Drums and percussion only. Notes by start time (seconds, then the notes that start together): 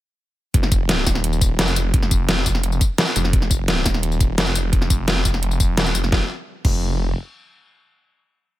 0.54 kick, closed hi-hat
0.63 snare
0.72 kick, closed hi-hat, tambourine
0.89 snare, closed hi-hat
1.07 kick, snare, closed hi-hat, tambourine
1.15 snare
1.24 closed hi-hat
1.33 tambourine
1.41 kick, closed hi-hat, tambourine
1.59 snare, closed hi-hat
1.68 tambourine
1.76 closed hi-hat, tambourine
1.94 kick, closed hi-hat
2.02 snare
2.11 kick, closed hi-hat, tambourine
2.29 snare, closed hi-hat
2.46 kick, closed hi-hat, tambourine
2.55 snare
2.63 closed hi-hat
2.72 tambourine
2.81 kick, closed hi-hat, tambourine
2.98 snare, closed hi-hat
3.07 tambourine
3.16 closed hi-hat, tambourine
3.25 snare
3.33 kick, closed hi-hat
3.42 snare
3.51 kick, closed hi-hat, tambourine
3.68 snare, closed hi-hat
3.86 kick, snare, closed hi-hat, tambourine
3.94 snare
4.03 closed hi-hat
4.12 tambourine
4.20 kick, closed hi-hat, tambourine
4.38 snare, closed hi-hat
4.47 tambourine
4.55 closed hi-hat, tambourine
4.73 kick, closed hi-hat
4.82 snare
4.90 kick, closed hi-hat, tambourine
5.08 snare, closed hi-hat
5.25 kick, closed hi-hat, tambourine
5.34 snare
5.43 closed hi-hat
5.51 tambourine
5.60 kick, closed hi-hat, tambourine
5.77 snare, closed hi-hat
5.86 tambourine
5.95 closed hi-hat, tambourine
6.04 snare
6.12 kick, snare
6.65 kick, crash